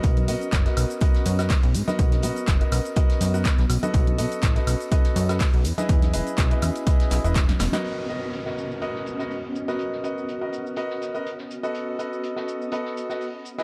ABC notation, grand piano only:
X:1
M:4/4
L:1/16
Q:"Swing 16ths" 1/4=123
K:B
V:1 name="Grand piano"
[FABd]2 [FABd]3 [FABd]3 [FABd]3 [FABd] z3 [FABd]- | [FABd]2 [FABd]3 [FABd]3 [FABd]3 [FABd] z3 [F=ABd]- | [F=ABd]2 [FABd]3 [FABd]3 [FABd]3 [FABd] z3 [EGBd]- | [EGBd]2 [EGBd]3 [EGBd]3 [EGBd]3 [EGBd] z3 [FABd]- |
[FABd]2 [FABd]3 [FABd]3 [FABd]3 [FABd] z3 [FABd]- | [FABd]2 [FABd]3 [FABd]3 [FABd]3 [FABd] z3 [F=ABd]- | [F=ABd]2 [FABd]3 [FABd]3 [FABd]3 [FABd] z3 [EGBd] |]